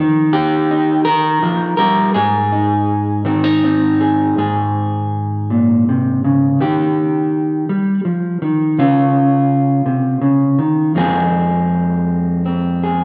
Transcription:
0.00 1.06 D#3 medium
0.33 1.04 G4 medium
0.71 2.52 D#4 soft
1.05 1.42 D#3 medium
1.05 1.76 A#4 loud
1.43 1.78 F3 medium
1.77 2.15 G3 medium
1.77 2.14 A#4 loud
2.14 4.34 G#2 medium
2.14 4.00 G#4 medium
2.52 3.25 D#4 soft
3.25 6.59 D#3 medium
3.25 3.44 C4 soft
3.44 4.38 D#4 soft
3.64 4.34 C4 soft
4.01 4.34 G#4 soft
4.38 6.56 G#2 medium
4.38 6.56 G#4 soft
5.50 5.87 A#2 soft
5.89 6.24 C3 soft
6.25 6.61 C#3 soft
6.61 7.69 D#3 medium
6.61 8.73 G4 medium
7.69 8.05 G3 soft
8.05 8.41 F3 soft
8.42 8.77 D#3 soft
8.79 9.85 C#3 medium
8.79 10.96 F4 medium
9.86 10.21 C3 soft
10.22 10.58 C#3 medium
10.59 10.95 D#3 soft
10.95 13.04 F2 medium
10.95 13.04 F3 medium
10.95 13.04 G#3 soft
10.95 12.44 C4 medium
10.95 12.82 G#4 medium
12.46 13.04 C4 soft
12.83 13.04 G#4 soft

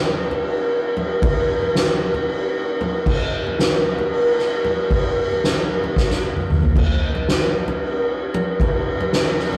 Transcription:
0.17 ride medium
0.31 high conga medium
0.31 low conga medium
0.43 ride loud
0.70 ride medium
0.96 ride medium
0.96 low conga medium
1.22 kick loud
1.22 ride loud
1.22 high conga medium
1.49 ride medium
1.62 low conga medium
1.75 snare loud
1.75 ride loud
2.02 ride medium
2.14 high conga medium
2.14 low conga medium
2.28 ride medium
2.54 ride medium
2.80 ride medium
2.80 low conga loud
3.06 kick loud
3.06 crash medium
3.06 high conga loud
3.32 ride medium
3.47 low conga medium
3.59 snare loud
3.59 ride loud
3.86 ride medium
3.99 high conga medium
3.99 low conga medium
4.12 ride loud
4.38 snare soft
4.38 ride medium
4.64 ride medium
4.64 low conga medium
4.91 kick loud
4.91 ride loud
4.91 high conga medium
4.91 low conga soft
5.17 ride medium
5.17 low conga soft
5.31 low conga medium
5.44 snare loud
5.44 ride loud
5.58 low conga soft
5.71 ride medium
5.84 high conga medium
5.84 low conga medium
5.96 kick loud
5.96 snare medium
5.96 low conga soft
6.10 snare medium
6.10 high conga medium
6.23 high conga medium
6.36 mid tom medium
6.36 high conga medium
6.50 mid tom loud
6.50 low conga medium
6.63 floor tom medium
6.63 low conga medium
6.76 kick loud
6.76 crash loud
6.76 high conga medium
7.02 ride medium
7.15 low conga medium
7.28 snare loud
7.28 ride medium
7.55 ride medium
7.68 high conga medium
7.68 low conga medium
7.81 ride medium
8.08 ride medium
8.34 ride medium
8.34 low conga loud
8.60 kick loud
8.60 ride loud
8.60 high conga loud
8.86 ride medium
9.00 low conga medium
9.13 snare loud
9.13 ride loud
9.39 snare soft
9.39 ride medium
9.53 high conga medium
9.53 low conga medium

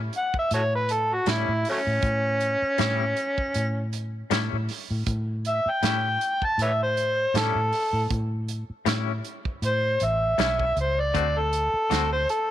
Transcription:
0.13 closed hi-hat medium
0.17 0.35 F#5 medium
0.34 kick medium
0.39 0.53 E5 medium
0.51 1.19 A2 medium
0.51 0.61 F#4 medium
0.51 0.62 A4 medium
0.51 0.72 C#5 medium
0.51 closed hi-hat medium
0.75 0.94 B4 medium
0.89 1.15 A4 medium
0.89 closed hi-hat medium
1.14 1.33 F#4 medium
1.26 1.52 A2 medium
1.26 1.46 A2 loud
1.26 1.52 G3 medium
1.26 1.52 C#4 medium
1.26 1.53 E4 medium
1.26 snare loud
1.26 closed hi-hat medium
1.31 1.66 E4 medium
1.49 1.64 A2 loud
1.65 open hi-hat medium
1.70 1.78 F#3 medium
1.70 1.78 A3 medium
1.70 3.91 C#4 medium
1.87 2.02 A2 medium
2.02 2.55 A2 loud
2.02 kick loud
2.02 closed hi-hat medium
2.40 closed hi-hat medium
2.62 muted fingered electric bass stroke soft
2.78 3.03 A2 medium
2.78 3.13 A2 loud
2.78 3.04 G3 medium
2.78 3.04 C#4 medium
2.78 3.05 E4 loud
2.78 snare loud
2.78 closed hi-hat medium
3.17 closed hi-hat medium
3.38 kick medium
3.54 4.22 A2 medium
3.54 closed hi-hat medium
3.93 closed hi-hat medium
4.30 4.55 A2 medium
4.30 4.50 A2 medium
4.30 4.56 G3 medium
4.30 4.56 C#4 medium
4.30 4.56 E4 medium
4.30 snare loud
4.30 closed hi-hat medium
4.53 4.67 A2 medium
4.69 snare soft
4.69 open hi-hat medium
4.91 5.05 A2 medium
5.06 5.59 A2 loud
5.06 kick loud
5.06 closed hi-hat medium
5.45 5.71 E5 medium
5.45 closed hi-hat medium
5.66 6.46 G5 loud
5.66 muted fingered electric bass stroke soft
5.83 6.07 A2 medium
5.83 6.16 A2 medium
5.83 6.08 G3 medium
5.83 6.08 C#4 medium
5.83 6.08 E4 medium
5.83 snare loud
5.83 closed hi-hat medium
6.21 closed hi-hat medium
6.42 6.59 A5 medium
6.42 kick medium
6.58 7.26 A2 medium
6.58 closed hi-hat medium
6.62 6.71 B4 medium
6.62 6.71 C#5 medium
6.62 6.80 E5 medium
6.83 7.39 C5 medium
6.97 closed hi-hat medium
7.34 7.53 A2 medium
7.34 7.59 A2 medium
7.34 7.59 G3 medium
7.34 7.60 C#4 medium
7.34 7.60 E4 medium
7.34 8.10 A4 medium
7.34 snare loud
7.34 closed hi-hat medium
7.55 7.71 A2 loud
7.73 open hi-hat medium
7.93 8.08 A2 medium
8.10 8.63 A2 loud
8.10 kick loud
8.10 closed hi-hat medium
8.48 closed hi-hat medium
8.70 muted fingered electric bass stroke soft
8.86 9.11 A2 medium
8.86 9.20 A2 medium
8.86 9.11 G3 medium
8.86 9.12 C#4 loud
8.86 9.12 E4 loud
8.86 snare loud
8.86 closed hi-hat medium
9.24 closed hi-hat medium
9.45 kick medium
9.62 9.96 A2 medium
9.62 closed hi-hat medium
9.66 10.06 C5 loud
10.00 10.36 A1 medium
10.00 closed hi-hat medium
10.04 10.77 E5 medium
10.38 10.73 B1 medium
10.38 10.63 A2 medium
10.38 10.64 G3 medium
10.38 10.64 C#4 medium
10.38 10.64 E4 medium
10.38 snare loud
10.38 closed hi-hat medium
10.59 kick medium
10.77 11.11 C#2 medium
10.77 11.01 C5 medium
10.77 closed hi-hat medium
11.00 11.40 D5 medium
11.14 11.67 D2 loud
11.14 11.39 D3 medium
11.14 11.39 A3 medium
11.14 11.40 C4 medium
11.14 11.40 F#4 medium
11.14 kick loud
11.14 closed hi-hat medium
11.39 12.11 A4 medium
11.53 closed hi-hat medium
11.74 muted fingered electric bass stroke soft
11.90 12.25 D2 medium
11.90 12.15 D3 medium
11.90 12.16 A3 medium
11.90 12.16 C4 medium
11.90 12.16 F#4 medium
11.90 snare loud
11.90 closed hi-hat medium
12.13 12.28 C5 loud
12.29 12.51 A4 loud
12.29 closed hi-hat medium

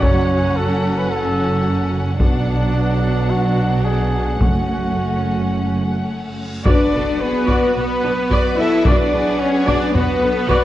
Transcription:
0.00 2.17 F#1 medium
0.00 2.17 F#2 medium
0.00 2.16 F#3 medium
0.00 2.18 F#3 medium
0.00 2.16 C#4 medium
0.00 2.17 C#4 medium
0.00 0.58 C#5 medium
0.00 2.20 F#5 medium
0.00 taiko medium
0.56 1.00 A4 medium
0.98 1.10 B4 medium
1.11 1.92 A4 medium
2.19 4.42 B1 medium
2.19 4.42 B2 medium
2.19 4.37 F#3 medium
2.19 4.37 D4 medium
2.19 3.32 D4 medium
2.19 4.37 D4 medium
2.19 6.42 F#5 soft
2.19 taiko medium
3.30 3.86 F#4 medium
3.84 4.43 G#4 medium
4.40 6.45 F#1 soft
4.40 5.22 F#2 medium
4.40 6.46 F#2 soft
4.40 6.33 A3 soft
4.40 6.41 A3 soft
4.40 6.33 C#4 soft
4.40 6.46 C#4 soft
4.40 6.10 F#4 medium
4.40 taiko medium
4.40 reverse cymbal soft
6.65 6.74 B1 medium
6.65 10.64 F#3 medium
6.65 10.64 B3 medium
6.65 7.17 D4 medium
6.65 7.18 D4 medium
6.65 10.64 F#4 medium
6.65 6.92 F#4 medium
6.65 10.64 B4 medium
6.65 6.92 B4 medium
6.65 7.22 D5 medium
6.65 6.92 D5 medium
6.65 7.18 D5 medium
6.65 10.64 F#5 medium
6.65 taiko medium
6.65 impact medium
6.94 7.02 B1 soft
6.94 7.03 B3 soft
6.94 7.02 F#4 soft
6.94 7.22 A4 medium
7.20 7.73 B3 medium
7.20 7.75 B3 medium
7.20 7.49 G#4 medium
7.20 7.75 B4 medium
7.48 7.56 B1 medium
7.48 7.74 F#4 medium
7.48 7.76 F#4 medium
7.48 7.74 D5 medium
7.48 taiko medium
7.74 7.84 B1 soft
7.74 8.56 B3 medium
7.74 8.57 B3 medium
7.74 7.85 B3 soft
7.74 7.85 F#4 soft
7.74 8.59 B4 medium
7.74 8.57 B4 medium
7.74 8.32 B4 medium
8.04 8.12 B1 soft
8.04 8.12 D4 medium
8.04 8.12 B4 soft
8.31 8.39 B1 medium
8.31 8.56 F#4 medium
8.31 8.57 D5 medium
8.31 8.58 D5 medium
8.31 taiko medium
8.58 8.67 B1 soft
8.58 8.67 B3 soft
8.58 8.86 E4 medium
8.58 8.85 E4 medium
8.58 8.67 F#4 medium
8.58 8.86 A4 medium
8.58 8.87 E5 medium
8.58 8.86 E5 medium
8.84 8.94 B1 medium
8.84 9.40 D4 medium
8.84 9.11 F#4 medium
8.84 9.13 B4 medium
8.84 9.41 D5 medium
8.84 9.40 D5 medium
8.84 9.12 D5 medium
8.84 taiko medium
9.13 9.21 B1 soft
9.13 9.22 B3 soft
9.13 9.21 F#4 medium
9.13 9.94 G#4 medium
9.39 9.68 C#4 medium
9.39 9.68 C#5 medium
9.66 9.76 B1 medium
9.66 9.94 D4 medium
9.66 9.95 D4 medium
9.66 9.93 F#4 medium
9.66 9.97 D5 medium
9.66 9.95 D5 medium
9.66 9.94 D5 medium
9.66 taiko medium
9.94 10.03 B1 medium
9.94 10.64 B3 medium
9.94 10.04 B3 soft
9.94 10.22 F#4 medium
9.94 10.04 F#4 medium
9.94 10.64 B4 medium
9.94 taiko low medium
10.21 10.30 B1 soft
10.21 10.31 D4 soft
10.21 10.49 A4 medium
10.21 10.31 B4 soft
10.48 10.57 B1 medium
10.48 10.64 F#4 medium
10.48 10.64 B4 medium
10.48 10.64 D5 medium
10.48 taiko medium

